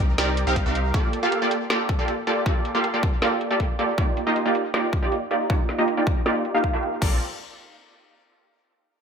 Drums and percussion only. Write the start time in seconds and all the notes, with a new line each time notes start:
0.18 snare, closed hi-hat
0.37 closed hi-hat
0.56 kick, closed hi-hat
0.75 closed hi-hat
0.94 kick, closed hi-hat
1.13 closed hi-hat
1.32 closed hi-hat
1.51 closed hi-hat
1.70 snare, closed hi-hat
1.89 kick, closed hi-hat
2.08 closed hi-hat
2.27 closed hi-hat
2.46 kick, closed hi-hat
2.65 closed hi-hat
2.84 closed hi-hat
3.03 kick, closed hi-hat
3.22 snare, closed hi-hat
3.41 closed hi-hat
3.60 kick, closed hi-hat
3.79 closed hi-hat
3.98 kick, closed hi-hat
4.17 closed hi-hat
4.36 closed hi-hat
4.55 closed hi-hat
4.74 snare, closed hi-hat
4.93 kick, closed hi-hat
5.12 closed hi-hat
5.31 closed hi-hat
5.50 kick, closed hi-hat
5.69 snare, closed hi-hat
5.88 closed hi-hat
6.07 kick, closed hi-hat
6.26 snare, closed hi-hat
6.45 closed hi-hat
6.64 kick, closed hi-hat
6.83 closed hi-hat
7.02 kick, crash